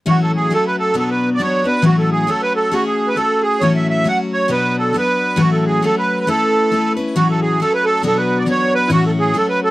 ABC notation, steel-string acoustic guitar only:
X:1
M:2/4
L:1/8
Q:"Swing" 1/4=136
K:A
V:1 name="Steel-string acoustic guitar"
[A,,E,F,A,CF]2 [F,A,CF]2 | [B,,F,B,DF]2 [F,B,DF] [B,DF] | [A,,E,F,A,CF]2 [F,A,CF]2 | [A,CFG]2 [A,CFG]2 |
[A,,E,F,A,CF]2 [F,A,CF]2 | [B,,F,B,DF]2 [F,B,DF]2 | [A,,E,F,A,CF]2 [F,A,CF]2 | [A,CEB]2 [A,CEB] [CEB] |
[A,,E,F,A,CF]2 [F,A,CF]2 | [B,,F,B,DF]2 [F,B,DF]2 | [A,,E,F,A,CF]2 [F,A,CF]2 |]